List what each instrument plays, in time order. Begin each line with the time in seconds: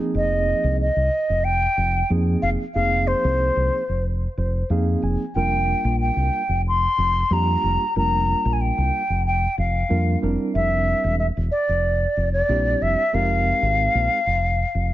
Already playing: reed electric piano F3 A#3 C4 D#4 G#4
0.15 fingered electric bass F1, flute D#5
0.64 fingered electric bass C2
0.81 flute D#5
0.96 fingered electric bass C2
1.29 fingered electric bass F1
1.44 flute G5
1.77 fingered electric bass F1
2.10 fingered electric bass F2, reed electric piano F3 A#3 C4 D#4 G#4
2.42 fingered electric bass F1, flute F5
2.74 fingered electric bass F1, reed electric piano F3 A#3 C4 D#4 G#4, flute F5
3.07 flute C5
3.24 fingered electric bass C2
3.56 fingered electric bass C2
3.89 fingered electric bass F1
4.37 fingered electric bass F1, reed electric piano C5
4.70 fingered electric bass F2, reed electric piano F3 A#3 C4 D#4 G#4 F5
5.02 fingered electric bass F1, reed electric piano G#5
5.35 fingered electric bass F1, reed electric piano G3 A#3 D4 F4 A#4, flute G5
5.84 fingered electric bass A#1
6.01 flute G5
6.16 fingered electric bass C2
6.49 fingered electric bass F1
6.68 flute C6
6.98 fingered electric bass F1
7.30 fingered electric bass F2, reed electric piano G3 A#3 D4 F4 G4, flute A#5
7.63 fingered electric bass F1
7.96 fingered electric bass F1, reed electric piano G3 A#3 D4 F4 A#4, flute A#5
8.45 fingered electric bass A#1
8.53 flute G#5
8.61 flute G5
8.78 fingered electric bass C2
9.10 fingered electric bass F1
9.26 flute G5
9.58 fingered electric bass F1, flute F5
9.89 fingered electric bass F2, reed electric piano G3 A#3 D4 F4 A#4
10.22 fingered electric bass F1, reed electric piano G3 C4 D4 E4 A#4
10.55 fingered electric bass F1, flute E5
11.04 fingered electric bass E1
11.19 flute E5
11.37 fingered electric bass E1
11.51 flute D5
11.69 fingered electric bass F1
12.17 fingered electric bass F1
12.33 flute D5
12.49 fingered electric bass A#1, reed electric piano G3 C4 D4 E4 G4
12.82 fingered electric bass F1, flute E5
13.13 fingered electric bass F1, reed electric piano G#3 C4 D#4 G4 A#4, flute F5
13.62 fingered electric bass G#1
13.95 fingered electric bass A#1
14.27 fingered electric bass F1
14.75 fingered electric bass F1